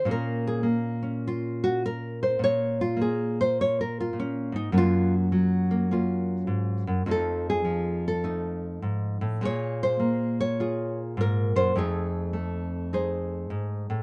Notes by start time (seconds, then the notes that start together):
Already playing: A#4
0.05 A#2 A#3 C#4
0.11 A#4
0.47 G#4
0.63 A#3
1.03 C#4
1.27 F4
1.64 F#4
1.86 A#4
2.23 C5
2.39 A#2
2.44 C#5
2.81 F4
2.97 A#3
3.01 G#4
3.41 C5
3.61 C#5
3.81 A#4
4.00 F4
4.13 A#2
4.20 C#4
4.52 G#2 D#4
4.72 F#2 F#3 A#3 C#4
4.78 F4
5.32 F#3
5.71 A#3
5.91 A#3 C#4 F4
6.47 G#2
6.87 F#2
7.06 F2 F3 A3 D#4
7.11 A4
7.50 G#4
7.64 F3
8.08 A4
8.24 A3 D#4
8.82 G#2
9.21 A2
9.41 A#2 A#3 F4 G#4
9.45 C#5
9.83 C5
10.00 A#3
10.40 C#5
10.60 F4 G#4
11.17 G#2 A#4
11.56 F#2 C5
11.76 F2 A3 D#4 G#4
12.33 A3
12.93 D#4 G#4 C5
13.50 G#2
13.90 A2